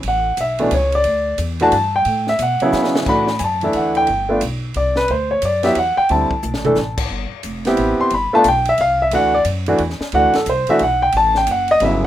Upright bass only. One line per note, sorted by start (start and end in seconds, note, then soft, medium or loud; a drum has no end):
0.04 0.37 A1 medium
0.37 0.70 B1 medium
0.71 1.04 C#2 medium
1.05 1.38 D2 medium
1.38 1.71 E2 medium
1.72 2.05 G2 medium
2.06 2.39 A2 medium
2.39 2.59 B2 medium
2.61 muted upright bass stroke soft
2.73 3.06 C#3 loud
3.07 3.39 A2 medium
3.40 3.73 F#2 loud
3.74 4.07 D2 medium
4.08 4.41 G1 medium
4.42 4.74 B1 medium
4.76 5.08 C2 medium
5.10 5.42 D2 medium
5.42 5.75 F#2 medium
5.76 5.96 E2 medium
5.98 muted upright bass stroke soft
6.10 6.30 D2 medium
6.31 muted upright bass stroke soft
6.44 6.55 B1 medium
6.55 6.65 A1 medium
6.66 6.76 F#1 medium
6.77 7.09 A1 medium
7.11 7.30 G1 medium
7.32 muted upright bass stroke soft
7.44 7.77 F1 medium
7.78 7.98 A1 medium
7.99 muted upright bass stroke soft
8.11 8.31 G1 medium
8.33 muted upright bass stroke soft
8.45 8.77 B1 medium
8.78 9.10 C2 medium
9.11 9.44 D2 medium
9.45 9.78 F#2 loud
9.79 9.99 E2 loud
10.00 muted upright bass stroke soft
10.13 10.26 D2 medium
10.24 10.35 C2 soft
10.36 10.46 A1 medium
10.46 10.66 C2 medium
10.68 muted upright bass stroke soft
10.81 11.13 B1 medium
11.13 11.46 A1 medium
11.47 11.80 F#1 loud
11.80 12.07 G1 loud